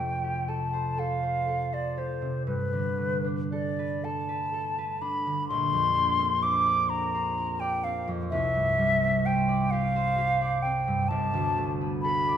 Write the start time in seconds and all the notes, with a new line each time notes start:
Already playing: F2 C3 G5
0.00 A3
0.24 G4
0.48 A4 A5
0.73 C5
0.98 A4 F5
1.23 C5
1.48 A4
1.72 C5 D5
1.97 G4 C5
2.22 C3
2.47 G2 B4
2.73 D3
2.98 A3
3.24 D4
3.52 A4 D5
3.79 B4
4.04 A4 A5
4.29 B4
4.53 A4
4.78 B4
5.01 D4 B5
5.26 D3
5.48 A#1 C6
5.73 F2
5.96 A#3
6.19 C4
6.43 C5 D6
6.66 D5
6.89 A#4 A#5
7.14 C5
7.38 A#4
7.60 D5 G5
7.84 C4 F5
8.07 F2
8.30 C2 E5
8.55 G2
8.78 G3
9.03 C4
9.26 C5 G5
9.48 D5
9.71 G4 F5
9.96 C5
10.18 G4
10.41 D5
10.62 C4 G5
10.88 G2
11.08 G1 A5
11.34 D2
11.58 A3
11.81 B3
12.02 A4 B5
12.28 D5